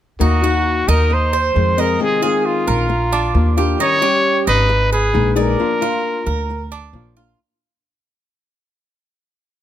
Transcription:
0.19 0.84 D#2 medium
0.19 0.42 D#3 medium
0.19 0.42 A#3 medium
0.19 0.42 D#4 medium
0.19 0.43 D#4 medium
0.19 0.41 F#4 medium
0.19 0.91 F#4 medium
0.42 1.10 A#3 medium
0.42 1.10 D#4 medium
0.42 1.09 F#4 medium
0.42 0.87 F#4 medium
0.88 1.51 D#2 medium
0.88 1.32 D#4 medium
0.88 1.15 A#4 medium
1.10 1.81 C5 medium
1.10 muted nylon-string guitar stroke medium
1.33 1.77 C5 medium
1.55 1.95 F2 medium
1.55 1.77 D#3 soft
1.55 1.77 G#3 soft
1.55 1.76 C4 soft
1.77 1.99 G#3 medium
1.77 1.99 C4 medium
1.77 2.01 A#4 medium
1.77 2.22 D#5 medium
1.99 2.21 C3 medium
1.99 2.22 D#3 medium
1.99 2.22 G#3 medium
1.99 2.22 C4 medium
1.99 2.21 F4 medium
1.99 2.22 G#4 medium
2.22 2.88 D#3 medium
2.22 2.89 G#3 medium
2.22 2.89 C4 medium
2.22 2.89 F4 medium
2.22 2.66 G#4 medium
2.22 2.47 G#4 medium
2.46 3.58 F4 medium
2.68 3.31 A#1 medium
2.68 3.11 A#4 medium
2.89 muted nylon-string guitar stroke medium
3.13 3.56 D4 medium
3.34 3.74 D#2 medium
3.34 3.56 F3 soft
3.34 3.56 A#3 soft
3.34 3.57 D4 soft
3.34 3.56 F4 medium
3.57 3.79 A#3 soft
3.57 3.79 D4 medium
3.57 3.79 F4 medium
3.57 3.79 G4 medium
3.79 4.01 D#3 medium
3.79 4.01 G3 medium
3.79 4.01 C#4 medium
3.79 4.02 D#4 medium
3.79 4.00 G4 medium
3.79 4.43 C#5 loud
4.01 4.69 G3 medium
4.01 4.69 C#4 medium
4.01 4.68 G4 medium
4.01 4.46 G4 medium
4.47 5.10 G#1 medium
4.47 4.91 D#4 medium
4.47 4.89 B4 medium
4.69 muted nylon-string guitar stroke medium
4.93 5.34 G#4 medium
4.93 5.36 B4 medium
5.13 5.54 A#1 medium
5.13 5.35 G#3 soft
5.13 5.35 B3 soft
5.13 5.35 D#4 soft
5.13 5.35 G#4 medium
5.36 5.58 G#3 medium
5.36 5.58 B3 medium
5.36 5.58 D#4 medium
5.36 5.58 G#4 medium
5.36 6.68 A#4 medium
5.36 5.80 D5 medium
5.59 5.80 F3 medium
5.59 5.81 A#3 medium
5.59 5.81 D4 medium
5.59 5.80 F4 medium
5.81 6.49 A#3 soft
5.81 6.48 D4 medium
5.81 6.48 F4 medium
5.81 6.25 F4 medium
6.26 6.90 D2 medium
6.26 6.70 A#4 medium
6.50 muted nylon-string guitar stroke medium
6.72 7.15 D4 medium
6.93 7.33 A#1 medium
6.93 7.15 F3 medium
6.93 7.16 A#3 soft
6.93 7.16 D4 soft
6.93 7.16 F4 soft
7.17 7.39 A#3 soft
7.17 7.38 D4 medium
7.17 7.38 F4 medium

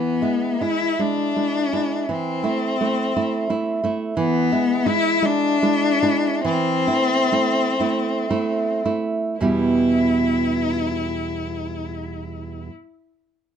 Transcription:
0.00 0.21 E3 medium
0.00 0.63 B3 medium
0.22 0.57 G#3 medium
0.22 0.58 E4 medium
0.61 0.95 G#3 medium
0.61 0.96 E4 medium
0.61 1.01 E4 medium
0.99 1.33 G#3 medium
0.99 2.11 D4 medium
0.99 1.33 E4 medium
1.36 1.70 G#3 soft
1.36 1.70 E4 medium
1.73 2.05 G#3 medium
1.73 2.05 E4 medium
2.09 2.43 E3 medium
2.09 3.84 C4 medium
2.43 2.75 A3 medium
2.43 2.75 E4 medium
2.81 3.12 A3 medium
2.81 3.12 E4 medium
3.16 3.47 A3 medium
3.16 3.47 E4 medium
3.50 3.80 A3 medium
3.50 3.80 E4 medium
3.84 4.13 A3 medium
3.84 4.14 E4 medium
4.17 4.50 E3 medium
4.17 4.88 B3 loud
4.52 4.84 G#3 medium
4.52 4.84 E4 medium
4.86 5.20 G#3 medium
4.86 5.26 E4 loud
4.86 5.20 E4 medium
5.22 5.58 G#3 medium
5.22 6.44 D4 loud
5.22 5.58 E4 medium
5.63 6.00 G#3 medium
5.63 6.00 E4 medium
6.02 6.42 G#3 medium
6.02 6.42 E4 medium
6.45 6.87 E3 loud
6.45 8.80 C4 loud
6.87 7.29 A3 medium
6.87 7.29 E4 medium
7.32 7.75 A3 medium
7.32 7.75 E4 medium
7.80 8.26 A3 medium
7.80 8.26 E4 medium
8.30 8.81 A3 medium
8.30 8.81 E4 medium
8.85 9.36 A3 medium
8.85 9.36 E4 medium
9.39 12.68 E2 medium
9.39 12.69 B2 medium
9.39 12.69 G3 medium
9.39 12.70 B3 medium
9.39 12.67 E4 medium
9.39 12.70 E4 medium
9.39 12.70 G4 medium

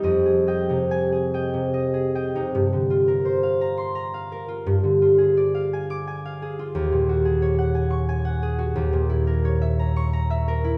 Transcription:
0.00 2.56 F2 medium
0.00 3.71 G3 medium
0.00 0.69 D#4 medium
0.00 1.09 G4 medium
0.00 0.46 D#5 medium
0.00 0.47 G5 medium
0.26 1.11 G#4 medium
0.47 1.33 D#5 soft
0.47 1.33 G5 medium
0.69 1.52 C3 soft
0.69 2.34 D#4 soft
0.91 2.56 G#5 medium
1.12 1.93 G#4 soft
1.34 1.72 D#5 medium
1.34 2.14 G5 medium
1.54 2.34 C3 soft
1.74 2.14 D#5 medium
1.94 2.56 G#4 soft
2.15 2.57 D#5 soft
2.15 4.69 G5 medium
2.35 2.57 C3 medium
2.35 2.57 D#4 soft
2.55 4.65 G2 medium
2.73 4.69 D3 medium
2.90 4.47 F4 medium
3.08 4.31 A#4 soft
3.25 6.77 C5 medium
3.43 4.13 F5 medium
3.61 3.94 A#5 medium
3.77 6.77 C6 medium
3.95 4.69 A#5 medium
4.14 5.53 F5 medium
4.32 4.69 A#4 medium
4.48 5.01 F4 medium
4.67 6.77 G2 medium
4.84 6.77 D3 soft
5.02 6.58 F4 soft
5.18 6.41 G#4 soft
5.37 6.77 D5 medium
5.55 6.24 F5 medium
5.73 6.06 G#5 medium
5.90 6.77 D6 medium
6.08 7.73 G#5 medium
6.25 8.79 F5 medium
6.42 7.24 G#4 medium
6.59 8.79 F4 medium
6.75 8.74 D#2 medium
6.92 8.78 A#2 medium
7.09 8.57 F#4 medium
7.25 8.41 G#4 medium
7.42 9.44 C#5 medium
7.59 8.24 F#5 medium
7.75 8.08 G#5 medium
7.90 9.95 C#6 medium
8.09 10.78 G#5 medium
8.25 8.78 F#5 medium
8.43 10.78 G#4 medium
8.58 8.78 F#4 medium
8.76 10.78 D#2 medium
8.93 10.78 A#2 medium
9.10 10.63 E4 medium
9.27 10.47 A#4 medium
9.45 10.78 C#5 medium
9.62 10.29 E5 medium
9.79 10.12 A#5 medium
9.96 10.78 C#6 medium
10.13 10.78 A#5 medium
10.30 10.78 E5 medium
10.48 10.78 A#4 medium
10.64 10.78 E4 medium

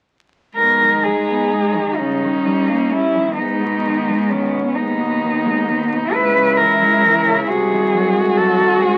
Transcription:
0.57 1.74 G#2 soft
0.57 0.83 B2 soft
0.57 2.00 D#4 soft
0.57 1.05 A#4 medium
0.81 1.07 D#3 soft
1.03 1.30 G#3 soft
1.03 1.98 G#4 soft
1.29 1.54 B3 soft
1.52 1.76 G#3 soft
1.75 1.98 D#3 soft
1.96 3.15 G2 soft
1.96 2.22 C#3 soft
1.96 3.38 C#4 soft
1.96 2.93 D#4 soft
2.21 2.46 D#3 soft
2.45 2.70 G3 soft
2.69 2.94 A#3 soft
2.91 3.17 G3 soft
2.91 3.36 E4 medium
3.15 3.38 D#3 soft
3.36 4.52 G#2 soft
3.36 3.64 G#2 soft
3.36 6.08 B3 soft
3.36 4.31 D#4 soft
3.62 3.87 B2 soft
3.85 4.09 D#3 soft
4.08 4.32 G#3 soft
4.30 4.54 D#3 soft
4.30 4.76 C#4 soft
4.53 4.77 B2 soft
4.74 5.89 D#2 soft
4.74 5.00 G#2 soft
4.74 6.13 D#4 soft
4.99 5.23 B2 soft
5.22 5.46 D#3 soft
5.44 5.69 G#3 soft
5.67 5.91 D#3 soft
5.89 6.11 B2 soft
6.12 7.24 C#2 soft
6.12 6.36 G#2 soft
6.12 7.49 E4 soft
6.12 6.58 B4 medium
6.35 6.59 C#3 soft
6.56 6.82 E3 soft
6.56 7.45 A#4 soft
6.80 7.04 G#3 soft
7.02 7.26 E3 soft
7.25 7.47 C#3 soft
7.46 8.58 C2 soft
7.46 7.71 C3 soft
7.46 8.98 F#4 soft
7.46 8.38 G#4 soft
7.70 7.94 D#3 soft
7.92 8.15 F#3 soft
8.14 8.38 G#3 soft
8.36 8.59 F#3 soft
8.36 8.82 A4 medium
8.58 8.80 D#3 soft
8.80 8.98 C#2 soft
8.80 8.98 G#2 soft
8.80 8.98 G#4 medium

